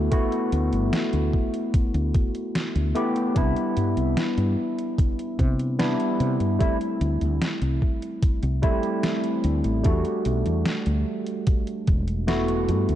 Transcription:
0.00 0.11 A3 medium
0.00 0.12 B3 medium
0.00 0.12 E4 medium
0.00 0.13 F#4 medium
0.11 0.28 A3 medium
0.11 0.29 B3 medium
0.11 0.29 E4 medium
0.11 0.29 F#4 medium
0.11 kick loud
0.11 closed hi-hat medium
0.32 closed hi-hat soft
0.52 0.70 D2 medium
0.52 closed hi-hat medium
0.73 0.90 G1 medium
0.73 closed hi-hat soft
0.93 snare loud
0.93 closed hi-hat medium
1.13 1.30 D2 medium
1.13 closed hi-hat soft
1.34 kick medium
1.54 closed hi-hat soft
1.74 kick loud
1.74 closed hi-hat medium
1.94 2.11 D2 medium
1.94 closed hi-hat soft
2.15 kick loud
2.15 closed hi-hat medium
2.35 closed hi-hat soft
2.55 snare loud
2.55 closed hi-hat medium
2.76 2.93 D2 medium
2.76 closed hi-hat soft
2.95 3.31 A3 medium
2.95 3.31 B3 medium
2.95 3.31 E4 medium
2.95 3.32 G4 loud
2.95 closed hi-hat medium
3.16 closed hi-hat soft
3.34 3.53 C2 medium
3.34 5.74 G3 medium
3.34 5.74 B3 medium
3.34 5.75 D4 medium
3.34 5.75 E4 medium
3.34 kick loud
3.34 closed hi-hat medium
3.56 closed hi-hat soft
3.77 3.94 G2 medium
3.77 closed hi-hat medium
3.97 4.14 C2 medium
3.97 closed hi-hat soft
4.17 snare loud
4.17 closed hi-hat medium
4.38 4.55 G2 medium
4.38 closed hi-hat soft
4.79 closed hi-hat soft
4.98 kick loud
4.98 closed hi-hat medium
5.19 closed hi-hat soft
5.39 5.95 C3 medium
5.39 kick loud
5.39 closed hi-hat medium
5.59 closed hi-hat soft
5.78 6.55 G3 medium
5.78 6.55 B3 medium
5.78 6.56 D4 medium
5.78 6.56 E4 medium
5.78 snare loud
5.78 closed hi-hat medium
6.00 closed hi-hat soft
6.20 6.37 C3 medium
6.20 closed hi-hat medium
6.40 6.57 G2 medium
6.40 closed hi-hat soft
6.59 6.76 G3 medium
6.59 6.77 A3 medium
6.59 6.77 C4 medium
6.59 6.77 E4 medium
6.59 kick loud
6.59 closed hi-hat medium
6.81 closed hi-hat soft
7.01 7.18 D2 medium
7.01 closed hi-hat medium
7.21 7.39 D2 medium
7.21 closed hi-hat soft
7.42 snare loud
7.42 closed hi-hat medium
7.62 7.79 C2 medium
7.62 closed hi-hat soft
7.82 kick medium
8.03 closed hi-hat soft
8.23 kick loud
8.23 closed hi-hat medium
8.43 8.60 C2 medium
8.43 closed hi-hat soft
8.62 8.79 G3 medium
8.62 8.80 A3 medium
8.62 8.80 C4 medium
8.62 8.80 E4 loud
8.62 kick loud
8.62 closed hi-hat medium
8.83 closed hi-hat soft
9.03 snare loud
9.03 closed hi-hat medium
9.24 closed hi-hat soft
9.44 9.62 D2 medium
9.44 closed hi-hat medium
9.64 9.82 A1 medium
9.64 closed hi-hat soft
9.84 10.02 E2 loud
9.84 12.23 G3 medium
9.84 12.23 A3 medium
9.84 12.24 D4 medium
9.84 12.24 F#4 medium
9.84 kick loud
9.84 closed hi-hat medium
10.05 closed hi-hat soft
10.25 10.43 B1 medium
10.25 closed hi-hat medium
10.46 10.63 E2 medium
10.46 closed hi-hat soft
10.65 snare loud
10.65 closed hi-hat medium
10.86 11.03 D2 medium
10.86 closed hi-hat soft
11.26 closed hi-hat soft
11.47 kick loud
11.47 closed hi-hat medium
11.67 closed hi-hat soft
11.87 12.70 E1 medium
11.87 kick loud
11.87 closed hi-hat medium
12.08 closed hi-hat soft
12.27 12.95 A3 medium
12.27 12.95 B3 medium
12.27 12.95 E4 medium
12.27 12.95 F#4 loud
12.27 snare loud
12.27 closed hi-hat medium
12.48 closed hi-hat soft
12.69 12.86 G2 medium
12.69 closed hi-hat medium
12.89 12.95 D2 medium
12.89 closed hi-hat soft

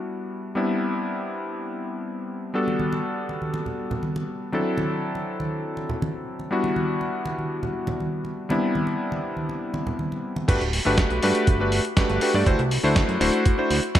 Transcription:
0.00 0.53 G3 medium
0.00 0.53 B3 medium
0.00 0.54 D4 medium
0.00 0.54 E4 medium
0.00 0.54 F#4 medium
0.55 2.51 G3 medium
0.55 2.51 B3 medium
0.55 2.52 C4 medium
0.55 2.52 D4 medium
0.55 2.52 E4 medium
2.54 4.50 G3 medium
2.54 4.50 B3 medium
2.54 4.50 D4 medium
2.54 4.50 F#4 medium
2.54 4.51 A4 medium
2.68 muted conga soft
2.79 high conga medium
2.93 muted conga medium
3.29 muted conga soft
3.42 high conga medium
3.54 muted conga medium
3.66 low conga medium
3.91 muted conga soft
3.91 low conga medium
4.03 high conga medium
4.16 muted conga medium
4.52 6.48 F#3 medium
4.52 6.48 C4 medium
4.52 6.49 D4 medium
4.52 6.49 E4 medium
4.52 6.49 A4 medium
4.52 muted conga soft
4.77 muted conga medium
4.77 high conga medium
5.15 muted conga soft
5.40 muted conga medium
5.40 high conga medium
5.77 muted conga soft
5.90 low conga medium
6.02 muted conga medium
6.02 high conga medium
6.39 muted conga soft
6.51 8.46 G3 medium
6.51 8.47 B3 medium
6.51 8.47 D4 medium
6.51 8.47 E4 medium
6.51 8.47 F#4 medium
6.64 muted conga medium
6.76 high conga medium
7.01 muted conga soft
7.26 muted conga medium
7.39 high conga medium
7.63 muted conga soft
7.63 low conga medium
7.87 muted conga medium
7.87 low conga medium
8.00 high conga medium
8.25 muted conga soft
8.49 10.45 G3 medium
8.49 10.45 B3 medium
8.49 10.45 C4 medium
8.49 10.46 D4 medium
8.49 10.46 E4 medium
8.49 muted conga medium
8.75 high conga medium
8.87 muted conga soft
9.12 muted conga medium
9.37 high conga medium
9.49 muted conga medium
9.74 muted conga medium
9.87 low conga medium
9.99 high conga medium
10.12 muted conga soft
10.36 muted conga medium
10.48 10.58 G1 loud
10.48 10.60 A3 medium
10.48 10.60 D4 medium
10.48 10.60 F#4 medium
10.48 10.61 G4 medium
10.48 10.61 B4 loud
10.48 kick loud
10.48 closed hi-hat medium
10.48 crash loud
10.61 10.81 D1 medium
10.61 closed hi-hat soft
10.73 open hi-hat loud
10.85 11.05 G1 medium
10.85 11.19 A3 medium
10.85 11.20 D4 medium
10.85 11.20 F#4 medium
10.85 11.20 G4 medium
10.85 11.20 B4 medium
10.98 kick loud
10.98 snare loud
10.98 closed hi-hat medium
11.10 11.20 B1 medium
11.10 closed hi-hat soft
11.23 11.33 G2 loud
11.23 11.57 A3 medium
11.23 11.57 D4 medium
11.23 11.57 F#4 medium
11.23 11.57 G4 medium
11.23 11.57 B4 loud
11.23 open hi-hat loud
11.35 closed hi-hat medium
11.47 11.81 G1 medium
11.47 kick loud
11.47 closed hi-hat medium
11.60 11.79 A3 medium
11.60 11.79 D4 medium
11.60 11.79 F#4 medium
11.60 11.80 G4 medium
11.60 11.80 B4 medium
11.72 open hi-hat loud
11.85 closed hi-hat medium
11.97 12.19 A3 medium
11.97 12.19 D4 medium
11.97 12.19 F#4 medium
11.97 12.19 G4 medium
11.97 12.19 B4 loud
11.97 kick loud
11.97 snare loud
11.97 closed hi-hat medium
12.10 12.19 G1 loud
12.10 closed hi-hat soft
12.21 12.31 A3 medium
12.21 12.31 D4 medium
12.21 12.31 F#4 medium
12.21 12.32 G4 medium
12.21 12.32 B4 medium
12.21 open hi-hat loud
12.34 12.44 G2 loud
12.34 12.45 A3 medium
12.34 12.45 D4 medium
12.34 12.45 F#4 medium
12.34 12.45 G4 medium
12.34 12.45 D5 medium
12.34 open hi-hat medium
12.46 12.56 D2 loud
12.46 12.59 A3 loud
12.46 12.59 D4 medium
12.46 12.59 E4 medium
12.46 12.59 F#4 medium
12.46 12.59 C5 loud
12.46 kick loud
12.46 closed hi-hat medium
12.59 12.79 C2 medium
12.59 closed hi-hat soft
12.71 open hi-hat loud
12.83 13.03 D2 medium
12.83 13.18 A3 medium
12.83 13.18 D4 medium
12.83 13.18 E4 medium
12.83 13.18 F#4 medium
12.83 13.18 C5 loud
12.96 kick loud
12.96 snare loud
12.96 closed hi-hat medium
13.09 13.18 F#2 medium
13.09 closed hi-hat soft
13.20 13.31 D1 loud
13.20 13.55 A3 medium
13.20 13.55 D4 medium
13.20 13.55 E4 medium
13.20 13.55 F#4 medium
13.20 13.55 C5 loud
13.20 open hi-hat loud
13.34 closed hi-hat medium
13.46 kick loud
13.46 closed hi-hat medium
13.58 13.77 A3 medium
13.58 13.77 D4 medium
13.58 13.78 E4 medium
13.58 13.78 F#4 medium
13.58 13.78 C5 medium
13.71 13.80 D2 loud
13.71 open hi-hat loud
13.83 closed hi-hat medium
13.95 14.00 A3 medium
13.95 14.00 D4 medium
13.95 14.00 E4 medium
13.95 14.00 F#4 medium
13.95 14.00 C5 loud
13.95 kick loud
13.95 snare loud
13.95 closed hi-hat medium

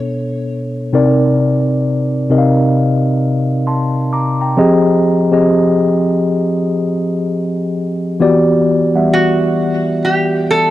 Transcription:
0.00 0.95 B2 medium
0.00 0.95 B3 medium
0.00 0.95 D4 medium
0.00 0.95 A4 medium
0.00 0.95 C#5 medium
0.93 2.13 C3 medium
0.93 2.13 C4 loud
0.93 2.14 D#4 medium
0.93 2.14 A#4 medium
0.93 2.14 D5 loud
2.30 3.86 C3 medium
2.30 3.86 C4 medium
2.30 3.86 D#4 medium
2.30 3.87 A#4 medium
2.30 2.39 D#5 medium
2.38 3.90 F5 medium
3.67 4.10 A5 medium
3.67 4.10 C6 medium
4.13 4.40 A#5 medium
4.13 4.40 D6 medium
4.41 4.84 G5 soft
4.41 4.84 A#5 medium
4.57 5.17 F3 loud
4.57 5.17 C4 medium
4.57 5.17 G4 medium
4.57 5.18 G#4 loud
4.57 5.18 D#5 loud
5.31 6.79 F3 medium
5.31 6.79 C4 medium
5.31 6.80 G4 medium
5.31 6.80 G#4 medium
5.31 6.80 D#5 medium
8.20 8.80 E3 loud
8.20 8.81 B3 loud
8.20 8.81 F#4 medium
8.20 8.81 G4 medium
8.20 8.81 D5 loud
8.94 10.42 E3 medium
8.94 10.43 G3 medium
8.94 10.43 B3 medium
8.94 10.44 E5 medium
8.94 10.43 F#5 medium
9.13 10.04 F#4 medium
10.05 10.50 G4 medium
10.51 10.70 A4 medium

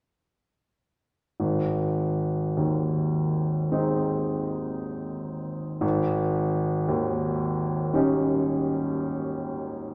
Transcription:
1.40 5.79 G#1 soft
2.57 4.36 D#2 soft
3.71 5.79 G#3 soft
3.71 5.79 C4 soft
3.71 5.79 D#4 soft
5.81 9.94 G#1 medium
6.88 8.59 D#2 soft
7.94 9.94 G3 soft
7.94 9.94 C#4 soft
7.94 9.94 D#4 soft

